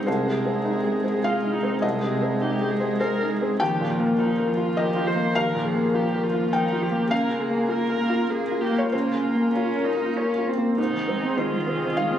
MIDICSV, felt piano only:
0, 0, Header, 1, 2, 480
1, 0, Start_track
1, 0, Key_signature, -4, "major"
1, 0, Tempo, 587084
1, 55, Time_signature, 3, 2, 24, 8
1, 5814, Tempo, 611621
1, 8694, Tempo, 594059
1, 9830, End_track
2, 0, Start_track
2, 0, Title_t, "Felt piano"
2, 0, Program_c, 0, 0
2, 0, Control_c, 0, 64, 127
2, 53, Note_on_c, 0, 72, 54
2, 63, Note_on_c, 0, 36, 42
2, 71, Control_c, 0, 64, 0
2, 215, Note_on_c, 0, 48, 37
2, 221, Control_c, 0, 64, 127
2, 372, Note_on_c, 0, 60, 32
2, 473, Note_off_c, 0, 48, 0
2, 530, Note_on_c, 0, 63, 34
2, 631, Note_off_c, 0, 60, 0
2, 688, Note_on_c, 0, 68, 35
2, 790, Note_off_c, 0, 63, 0
2, 839, Note_off_c, 0, 72, 0
2, 851, Note_on_c, 0, 72, 33
2, 949, Note_off_c, 0, 68, 0
2, 1014, Note_on_c, 0, 68, 37
2, 1015, Note_on_c, 0, 77, 64
2, 1111, Note_off_c, 0, 72, 0
2, 1177, Note_on_c, 0, 63, 35
2, 1271, Note_off_c, 0, 68, 0
2, 1335, Note_on_c, 0, 60, 31
2, 1433, Note_off_c, 0, 63, 0
2, 1463, Note_off_c, 0, 77, 0
2, 1468, Note_off_c, 0, 36, 0
2, 1489, Note_on_c, 0, 75, 60
2, 1499, Note_on_c, 0, 36, 47
2, 1513, Control_c, 0, 64, 0
2, 1592, Note_off_c, 0, 60, 0
2, 1624, Control_c, 0, 64, 127
2, 1660, Note_on_c, 0, 48, 41
2, 1815, Note_on_c, 0, 60, 37
2, 1915, Note_off_c, 0, 48, 0
2, 1968, Note_on_c, 0, 63, 42
2, 2073, Note_off_c, 0, 60, 0
2, 2132, Note_on_c, 0, 68, 38
2, 2228, Note_off_c, 0, 63, 0
2, 2292, Note_on_c, 0, 72, 37
2, 2390, Note_off_c, 0, 68, 0
2, 2420, Note_off_c, 0, 75, 0
2, 2446, Note_off_c, 0, 72, 0
2, 2457, Note_on_c, 0, 68, 39
2, 2458, Note_on_c, 0, 72, 61
2, 2628, Note_on_c, 0, 63, 38
2, 2718, Note_off_c, 0, 68, 0
2, 2791, Note_on_c, 0, 60, 35
2, 2886, Note_off_c, 0, 63, 0
2, 2914, Note_off_c, 0, 72, 0
2, 2915, Note_off_c, 0, 36, 0
2, 2941, Note_on_c, 0, 79, 79
2, 2949, Note_on_c, 0, 39, 54
2, 2950, Note_off_c, 0, 60, 0
2, 2961, Control_c, 0, 64, 0
2, 3110, Note_on_c, 0, 46, 45
2, 3118, Control_c, 0, 64, 127
2, 3262, Note_on_c, 0, 58, 44
2, 3361, Note_off_c, 0, 46, 0
2, 3422, Note_on_c, 0, 65, 45
2, 3516, Note_off_c, 0, 58, 0
2, 3584, Note_on_c, 0, 70, 42
2, 3675, Note_off_c, 0, 65, 0
2, 3736, Note_on_c, 0, 65, 43
2, 3835, Note_off_c, 0, 70, 0
2, 3862, Note_off_c, 0, 79, 0
2, 3897, Note_on_c, 0, 70, 41
2, 3900, Note_on_c, 0, 75, 70
2, 3991, Note_off_c, 0, 65, 0
2, 4055, Note_on_c, 0, 65, 44
2, 4151, Note_off_c, 0, 70, 0
2, 4215, Note_on_c, 0, 58, 39
2, 4309, Note_off_c, 0, 65, 0
2, 4342, Note_off_c, 0, 39, 0
2, 4342, Note_off_c, 0, 75, 0
2, 4377, Note_on_c, 0, 77, 86
2, 4380, Note_on_c, 0, 39, 56
2, 4387, Control_c, 0, 64, 0
2, 4469, Note_off_c, 0, 58, 0
2, 4534, Note_on_c, 0, 46, 45
2, 4535, Control_c, 0, 64, 127
2, 4694, Note_on_c, 0, 58, 46
2, 4789, Note_off_c, 0, 46, 0
2, 4859, Note_on_c, 0, 65, 48
2, 4949, Note_off_c, 0, 58, 0
2, 5022, Note_on_c, 0, 70, 45
2, 5111, Note_off_c, 0, 65, 0
2, 5177, Note_on_c, 0, 65, 43
2, 5272, Note_off_c, 0, 70, 0
2, 5300, Note_off_c, 0, 77, 0
2, 5338, Note_on_c, 0, 70, 46
2, 5339, Note_on_c, 0, 79, 74
2, 5429, Note_off_c, 0, 65, 0
2, 5497, Note_on_c, 0, 65, 48
2, 5590, Note_off_c, 0, 70, 0
2, 5650, Note_on_c, 0, 58, 40
2, 5750, Note_off_c, 0, 65, 0
2, 5782, Note_off_c, 0, 39, 0
2, 5783, Note_off_c, 0, 79, 0
2, 5806, Note_on_c, 0, 37, 55
2, 5811, Note_off_c, 0, 58, 0
2, 5812, Note_on_c, 0, 77, 82
2, 5828, Control_c, 0, 64, 0
2, 5933, Control_c, 0, 64, 127
2, 5963, Note_on_c, 0, 49, 45
2, 6119, Note_on_c, 0, 58, 46
2, 6214, Note_off_c, 0, 49, 0
2, 6264, Note_on_c, 0, 65, 40
2, 6371, Note_off_c, 0, 58, 0
2, 6432, Note_on_c, 0, 70, 37
2, 6523, Note_off_c, 0, 65, 0
2, 6587, Note_on_c, 0, 65, 40
2, 6687, Note_off_c, 0, 70, 0
2, 6749, Note_on_c, 0, 70, 37
2, 6845, Note_off_c, 0, 65, 0
2, 6915, Note_on_c, 0, 65, 38
2, 7008, Note_off_c, 0, 70, 0
2, 7077, Note_on_c, 0, 58, 33
2, 7085, Note_off_c, 0, 77, 0
2, 7127, Note_on_c, 0, 73, 59
2, 7174, Note_off_c, 0, 65, 0
2, 7205, Note_off_c, 0, 37, 0
2, 7236, Note_off_c, 0, 73, 0
2, 7236, Note_on_c, 0, 72, 58
2, 7245, Note_on_c, 0, 37, 40
2, 7254, Control_c, 0, 64, 0
2, 7339, Note_off_c, 0, 58, 0
2, 7371, Control_c, 0, 64, 127
2, 7409, Note_on_c, 0, 49, 34
2, 7571, Note_on_c, 0, 58, 34
2, 7667, Note_off_c, 0, 49, 0
2, 7695, Note_off_c, 0, 72, 0
2, 7735, Note_on_c, 0, 70, 37
2, 7741, Note_on_c, 0, 65, 36
2, 7828, Note_off_c, 0, 58, 0
2, 7882, Note_off_c, 0, 70, 0
2, 7894, Note_on_c, 0, 70, 31
2, 7991, Note_off_c, 0, 65, 0
2, 8059, Note_on_c, 0, 65, 32
2, 8147, Note_off_c, 0, 70, 0
2, 8219, Note_on_c, 0, 70, 30
2, 8310, Note_off_c, 0, 65, 0
2, 8380, Note_on_c, 0, 65, 30
2, 8472, Note_off_c, 0, 70, 0
2, 8531, Note_on_c, 0, 58, 27
2, 8633, Note_off_c, 0, 65, 0
2, 8663, Note_off_c, 0, 37, 0
2, 8691, Note_off_c, 0, 58, 0
2, 8693, Note_on_c, 0, 44, 44
2, 8706, Control_c, 0, 64, 0
2, 8822, Control_c, 0, 64, 127
2, 8932, Note_on_c, 0, 60, 39
2, 9168, Note_on_c, 0, 51, 34
2, 9175, Note_on_c, 0, 72, 58
2, 9317, Note_off_c, 0, 60, 0
2, 9415, Note_on_c, 0, 60, 37
2, 9552, Note_off_c, 0, 51, 0
2, 9619, Note_off_c, 0, 72, 0
2, 9654, Note_on_c, 0, 77, 60
2, 9657, Note_on_c, 0, 51, 35
2, 9796, Note_off_c, 0, 60, 0
2, 9830, Note_off_c, 0, 44, 0
2, 9830, Note_off_c, 0, 51, 0
2, 9830, Note_off_c, 0, 77, 0
2, 9830, End_track
0, 0, End_of_file